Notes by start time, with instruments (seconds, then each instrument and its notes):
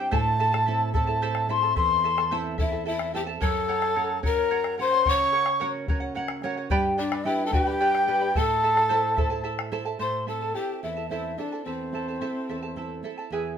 Already playing: nylon-string guitar C4 E4 G4, quena G5
0.00 charango E4 G5
0.11 nylon-string guitar A2, charango E4 A4 C5 E5 A5, quena A5, bombo low
0.39 charango E4 A4 E5 A5, bombo rim
0.52 charango E4 A4 A5, bombo rim
0.66 nylon-string guitar C4 E4 A4, charango E4 A4 E5 A5
0.94 nylon-string guitar C4 E4 A4, charango E4 A4 E5 A5, quena A5, bombo low
1.07 charango E4 A4 A5
1.22 charango E4 A4 C5 E5 A5
1.35 bombo rim
1.49 nylon-string guitar C4 E4 A4, charango E4 A4 E5 A5, quena C6, bombo rim
1.62 charango E4 A4 A5
1.76 nylon-string guitar E2, charango E4 A4 E5 A5, quena C6, bombo rim, bombo low
2.04 charango E4 A4 E5 A5
2.17 charango E4 A4 A5, bombo rim
2.31 nylon-string guitar C4 E4 A4, charango E4 A4 C5 E5 A5
2.46 bombo rim
2.58 nylon-string guitar C4 E4 A4, charango E4 A4 E5 A5, pan flute E4, quena E5, bombo rim, bombo low
2.72 charango E4 A4 A5, bombo rim
2.85 charango E4 A4 E5 A5, pan flute E4, quena E5
2.99 bombo rim
3.13 nylon-string guitar C4 E4 A4, charango E4 A4 E5 A5, pan flute G4, quena G5
3.27 charango E4 A4 A5
3.40 nylon-string guitar F#2, pan flute A4, charango A#4 C#5 F#5, quena A5, bombo low
3.68 charango A#4 C#5 F#5, bombo rim
3.81 charango C#5 F#5, bombo rim
3.95 nylon-string guitar C#4 F#4 A#4, charango A#4 C#5 F#5
4.23 nylon-string guitar C#4 F#4 A#4, charango A#4 C#5 F#5, pan flute A#4, quena A#5, bombo low
4.37 charango C#5 F#5
4.51 charango A#4 C#5 F#5
4.64 bombo rim
4.78 nylon-string guitar C#4 F#4 A#4, charango A#4 C#5 F#5, pan flute C5, quena C6, bombo rim
4.92 charango C#5 F#5
5.05 nylon-string guitar C#3, charango A#4 C#5 F#5, pan flute C#5, quena C#6, bombo low
5.32 charango A#4 C#5 F#5, bombo rim
5.46 charango C#5 F#5, bombo rim
5.60 nylon-string guitar C#4 F#4 A#4, charango A#4 C#5 F#5
5.88 nylon-string guitar C#4 F#4 A#4, charango A#4 C#5 F#5, bombo low
6.00 charango C#5 F#5
6.15 charango A#4 C#5 F#5, nylon-string guitar F#5
6.28 bombo rim
6.42 nylon-string guitar C#4 F#4 A#4 C#5, charango A#4 C#5 F#5, bombo rim
6.57 charango C#5 F#5
6.70 nylon-string guitar G2, charango G4 B4 D5 G5 B5, bombo low
6.97 pan flute D4, charango B4 D5 G5 B5, quena D5, bombo rim
7.12 charango B4 D5 B5, bombo rim
7.24 nylon-string guitar D4 G4 B4, pan flute E4, charango B4 D5 G5 B5, quena E5
7.46 pan flute A4, quena A5
7.51 nylon-string guitar D4 G4 B4, pan flute F#4, charango B4 D5 G5 B5, quena F#5, bombo low
7.64 pan flute G4, charango D5 B5, quena G5
7.68 charango B4
7.81 charango G4 B4 D5 G5 B5
7.95 bombo rim
8.07 nylon-string guitar D4 G4 B4, charango B4 D5 G5 B5, bombo rim
8.21 charango B4 D5 B5
8.35 nylon-string guitar A2, charango E4 A4 E5 A5, pan flute A4, quena A5, bombo low
8.63 charango E4 A4 E5 A5
8.76 charango E4 A4 A5, bombo rim
8.89 charango E4 A4 C5 E5 A5, nylon-string guitar E4 A4 C5
9.16 nylon-string guitar E4 A4 C5, charango E4 A4 E5 A5, bombo low
9.30 charango E4 A4 A5
9.44 charango E4 A4 E5 A5
9.59 bombo rim
9.72 nylon-string guitar E4 A4 C5, charango E4 A4 E5 A5
9.85 charango E4 A4 A5
9.99 nylon-string guitar A2, charango E4 A4 C5 E5 A5, pan flute C5, quena C6
10.26 nylon-string guitar C4 E4 A4, charango E4 A4 E5 A5, pan flute A4, quena A5
10.42 charango E4 A4 A5
10.55 nylon-string guitar C4 E4 A4, charango E4 A4 E5 A5, pan flute G4, quena G5
10.83 nylon-string guitar E2, pan flute E4, charango E4 A4 E5 A5, quena E5
10.97 charango E4 A4 A5
11.10 nylon-string guitar C4 E4 A4, pan flute E4, charango E4 A4 C5 E5 A5, quena E5
11.37 nylon-string guitar C4 E4 A4, pan flute D4, charango E4 A4 E5 A5, quena D5
11.52 charango E4 A4 A5
11.65 nylon-string guitar E2, pan flute C4, charango E4 A4 E5 A5, quena C5
11.92 nylon-string guitar C4 E4 A4, charango E4 A4 E5 A5
12.08 charango E4 A4 A5
12.21 nylon-string guitar C4 E4 A4, charango E4 A4 C5 E5 A5
12.49 nylon-string guitar E2, charango E4 A4 E5 A5
12.63 charango E4 A4 A5
12.76 nylon-string guitar C4 E4 A4, charango E4 A4 E5 A5
13.03 nylon-string guitar C4 E4 A4, charango E4 A4 E5 A5
13.18 charango E4 A4 A5
13.30 nylon-string guitar E2, charango E4 G#4 B4 E5 G#5